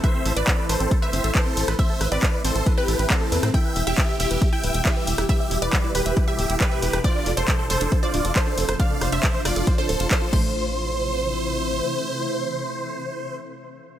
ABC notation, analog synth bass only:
X:1
M:4/4
L:1/16
Q:1/4=137
K:Am
V:1 name="Analog synth bass" clef=bass
z2 A,,, A,,, z2 A,,, A,,, z2 G,,, A,,, z2 A,,, A,,, | z2 A,,, A,,, z2 A,,, A,,, z2 A,,, A,,, z2 E,, A,, | z2 E,,, E,,, z2 E,,, E,,, z2 D,,, E,,, z2 E,,, E,,, | z2 E,,, E,,, z2 E,,, E,,, z2 D,,, E,,, z2 E,,, E,,, |
z2 F,,, F,,, z2 F,,, F,,, z2 D,,, F,,, z2 F,,, F,,, | z2 F,,, F,,, z2 F,,, F,,, z2 D,,, F,,, z2 A,,,2- | A,,,12 z4 | z16 |]